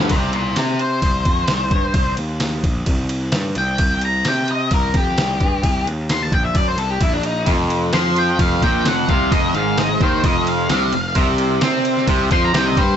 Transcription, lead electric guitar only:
0.11 C5 E5
0.33 A#4 D5
0.57 G4 C5
0.81 C5
3.58 G5
4.05 A#5
4.28 G5
4.51 D#5
4.74 A#4
4.97 G4
6.11 C6
6.23 A5
6.33 G5
6.45 E5
6.57 D5
6.68 C5
6.78 A4
6.90 G4
7.02 E4
7.13 D4
7.26 D#4
7.94 C6
8.19 G5
8.40 F5
8.63 G5
8.87 F#5
9.10 F5
9.32 D#5
9.55 F5
9.79 D#5
10.03 C5
10.26 D#5
10.48 F5
12.33 C6
12.45 A#5
12.56 G5
12.67 D#5
12.78 C5

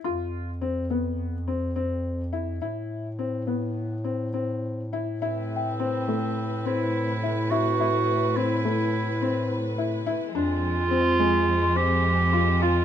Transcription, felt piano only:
0.04 F4
0.61 C4
0.90 B3
1.48 C4
1.76 C4
2.33 E4
2.62 E4
3.19 C4
3.47 B3
4.04 C4
4.34 C4
4.93 E4
5.22 E4
5.80 C4
6.08 A3
6.65 C4
7.23 E4
7.51 E4
7.80 E4
8.36 C4
8.65 A3
9.21 C4
9.78 E4
10.06 E4
10.35 D4
10.91 C4
11.20 G#3
11.76 C4
12.33 F4
12.62 F4

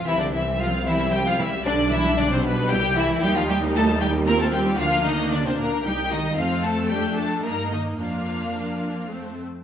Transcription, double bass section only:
0.06 C2
1.64 B1
2.70 C2
3.23 D#2
4.80 D2
5.84 C2
6.37 F2
7.45 G2
7.99 F2

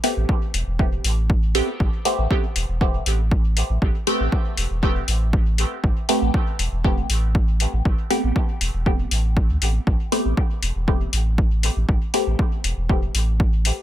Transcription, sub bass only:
0.17 A1
0.54 E1
0.67 E1
1.04 A1
1.80 A1
2.18 A1
2.56 E1
2.69 E1
3.06 A1
3.70 A1
3.82 A1
4.20 A1
4.58 E1
4.71 E1
5.08 A1
5.84 A1
6.22 A1
6.59 E1
6.72 E1
7.10 A1
7.73 A1
7.85 A1
8.24 A1
8.61 E1
8.74 E1
9.11 A1
9.50 D2
9.62 A1
9.87 A1
10.25 A1
10.63 E1
10.76 E1
11.13 A1
11.77 A1
11.89 A1
12.27 A1
12.64 E1
12.77 E1
13.15 A1

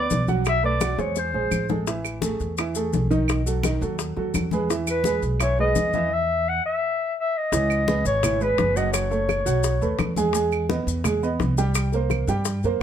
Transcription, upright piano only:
Already playing: B3 B4 D5
0.28 F#3 F#4 F#5
0.63 A3 A4 B4
0.82 F#3 F#4 F#5
0.98 G#3 G#4 C5
1.34 G#3 G#4 C5
1.69 G#3 G#4 A4
1.87 E3 E4 E5
2.23 A3 G#4 A4
2.59 E3 E4 E5
2.76 A3 G#4 A4
3.10 D#3 D#4 D#5
3.46 F#3 F#4 A4
3.64 D#3 D#4 D#5
3.81 F#3 F#4 A4
4.17 F#3 F#4 A4
4.53 G#3 G#4 B4
4.70 E3 E4 E5
5.06 G#3 G#4 B4
5.41 E3 E4 E5
5.59 G#3 G#4 B4
5.94 E3 E4 E5
7.53 E3 E4 C#5
7.88 G#3 G#4 B4
8.23 E3 E4 E5
8.41 G#3 G#4 B4
8.76 F#3 F#4 F#5
9.11 A3 A4 C#5
9.45 F#3 F#4 F#5
9.81 A3 A4 B4
10.17 G#3 G#4 G#5
10.35 G#3 G#4 G#5
10.69 B3 B4 D#5
11.05 G#3 G#4 G#5
11.23 B3 B4 D#5
11.58 G3 G4 G5
11.94 A#3 A#4 C5
12.28 G3 G4 G5
12.65 A#3 A#4 C5

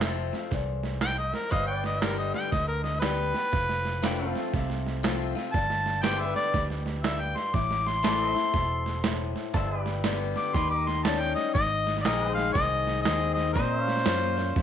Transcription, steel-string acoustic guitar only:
Already playing: F2
0.01 F3 A3 C4 F4
0.34 C4 F4
0.52 E2
1.02 F2
1.52 G2
2.01 D3 G3 B3 G4
2.53 D3
3.02 D3 G3 B3 G4
3.34 B3 G4
3.52 F2
4.02 F3 A3 C4 F4
4.54 C3
5.03 F3 A3 C4 F4
5.35 C4 F4
5.54 G2
6.04 D3 G3 B3 G4
6.55 F2
7.04 G2
7.54 A2
8.03 E3 A3 C4 E4
8.35 C4 E4
8.54 B2
9.04 A2
9.55 G2
10.05 D3 G3 B3 G4
10.56 D#3
11.06 D#3 G3 C#4 G4
11.56 G#2
12.06 D#3 G#3 C4 G#4
12.56 D#3
13.05 D#3 G#3 C4 G#4
13.56 A#2
14.04 A#3 C#4 F4 C5
14.36 F4 C5
14.56 F3

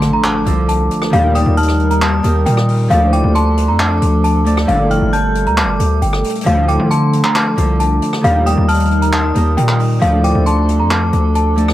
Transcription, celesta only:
Already playing: A5
0.13 A#5
0.24 A5
0.69 A5
1.13 F5
1.35 G5
1.57 A5
1.91 A#5
2.02 A5
2.46 G5
2.90 F5
3.13 G5
3.35 A5
3.68 A#5
3.80 A5
4.24 A5
4.68 F5
4.91 G5
5.13 A5
5.47 A#5
5.57 A5
6.02 G5
6.46 F5
6.68 G5
6.91 A5
7.24 A#5
7.35 A5
7.80 A5
8.24 F5
8.47 G5
8.69 A5
9.02 A#5
9.13 A5
9.57 G5
10.02 F5
10.24 G5
10.47 A5
10.80 A#5
10.91 A5
11.35 A5

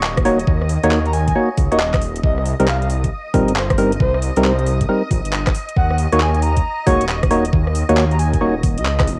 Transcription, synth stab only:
0.25 A#3 D#4 F#4 C#5
0.83 A#3 D#4 F#4 C#5
1.35 A#3 D#4 F#4 C#5
1.72 A#3 D#4 F#4 C#5
2.60 G3 C4 D#4 A#4
3.34 G3 C4 D#4 A#4
3.78 G3 C4 D#4 A#4
4.37 G3 C4 D#4 A#4
4.88 G3 C4 D#4 A#4
6.13 A#3 D#4 F#4 C#5
6.87 A#3 D#4 F#4 C#5
7.31 A#3 D#4 F#4 C#5
7.89 A#3 D#4 F#4 C#5
8.41 A#3 D#4 F#4 C#5

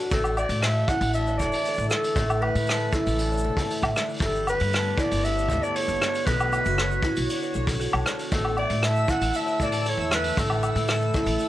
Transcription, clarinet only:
0.12 A4
0.38 D5
0.63 E5
0.88 F#5
1.14 E5
1.38 D5
1.89 A4
2.41 B4
2.93 A4
4.24 A4
4.49 B4
5.00 D5
5.24 E5
5.63 D5
5.75 C#5
6.26 B4
8.33 A4
8.58 D5
8.84 E5
9.10 F#5
9.36 E5
9.63 D5
9.89 C#5
10.14 B4
10.39 A4

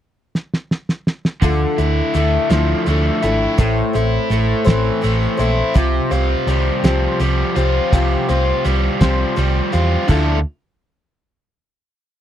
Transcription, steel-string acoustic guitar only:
1.42 D3 F3 A3 D4 E4 A4
1.78 A3 D4 E4 A4
2.14 A3 D4 E4 A4
2.50 D3 F3 A3 D4 E4 A4
2.87 A3 D4 E4 A4
3.24 A3 D4 E4 A4
3.58 A2 E3 A3 C4 A4 C5
3.93 A3 C4 A4 C5
4.30 A3 C4 A4 C5
4.64 A2 E3 A3 C4 A4 C5
5.01 A3 C4 A4 C5
5.37 A3 C4 A4 C5
5.74 C3 F3 G3 C4 G4 C5
6.11 G3 C4 G4 C5
6.47 G3 C4 G4 C5
6.84 C3 F3 G3 C4 G4 C5
7.20 G3 C4 G4 C5
7.56 G3 C4 G4 C5
7.93 C3 F3 G3 C4 G4 C5
8.29 G3 C4 G4 C5
8.64 G3 C4 G4 C5
9.01 C3 F3 G3 C4 G4 C5
9.36 G3 C4 G4 C5
9.72 G3 C4 G4 C5
10.08 D3 F3 A3 D4 E4 A4

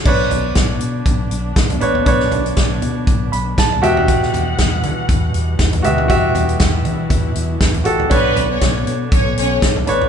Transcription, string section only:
0.06 D3 B3 D4
3.84 E3 G3 F#5
5.84 E4
8.12 B2 D3 B3

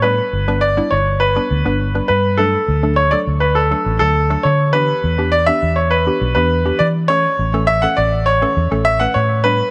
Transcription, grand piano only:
0.02 B4
0.61 D5
0.91 C#5
1.20 B4
2.08 B4
2.37 A4
2.96 C#5
3.11 D5
3.40 B4
3.55 A4
3.99 A4
4.43 C#5
4.73 B4
5.32 D5
5.46 E5
5.76 C#5
5.91 B4
6.35 B4
6.79 D5
7.08 C#5
7.67 E5
7.82 F#5
7.97 D5
8.26 C#5
8.85 E5
9.00 F#5
9.14 C#5
9.44 B4

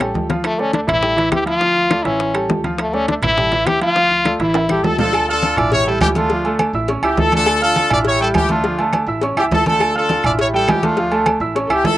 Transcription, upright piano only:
0.01 G3 G4 A4
0.30 F3 F4 F5
0.58 A3 A4 D5
0.87 E3 E4 E5
1.02 G3 G4 A4
1.17 E3 E4 E5
1.46 F3 F4 F5
1.61 F3 F4 F5
1.90 A3 A4 D5
2.05 E3 E4 E5
2.34 G3 G4 A4
2.64 F3 F4 F5
2.93 A3 A4 D5
3.23 E3 E4 E5
3.37 G3 G4 A4
3.52 E3 E4 E5
3.81 F3 F4 F5
3.96 F3 F4 F5
4.25 A3 A4 D5
4.40 E3 E4 E5
4.70 G3 G4 A4
4.99 F3 F4 F5
5.29 F4 F5 F6
5.58 E4 E5 E6
5.87 G3 G4 G5
6.16 A3 A4 A5
6.31 F3 F4 F5
6.46 A3 A4 A5
6.75 E4 E5 E6
6.89 C#4 C#5 C#6
7.03 E4 E5 E6
7.32 A3 A4 A5
7.62 F4 F5 F6
7.90 E4 E5 E6
8.20 G3 G4 G5
8.50 A3 A4 A5
8.65 F3 F4 F5
8.79 A3 A4 A5
9.07 E4 E5 E6
9.22 C#4 C#5 C#6
9.37 E4 E5 E6
9.66 A3 A4 A5
9.95 F4 F5 F6
10.25 E4 E5 E6
10.53 G3 G4 G5
10.83 A3 A4 A5
10.98 F3 F4 F5
11.12 A3 A4 A5
11.41 E4 E5 E6
11.55 C#4 C#5 C#6
11.70 E4 E5 E6

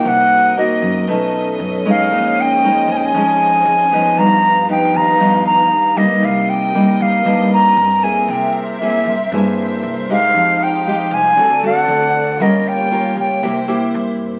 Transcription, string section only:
0.05 C4 F#4 A#4 D#5
1.09 C#4 A4 B4
2.12 G#4 C5
4.17 D#4 G4 B4 F5
6.22 C4 A#4 D#5
8.30 C5 E5
10.35 D#4 G4 F5
11.35 C4 F#4 A4 D5
12.37 A#3 F4 G4 C#5
13.42 E4 C5

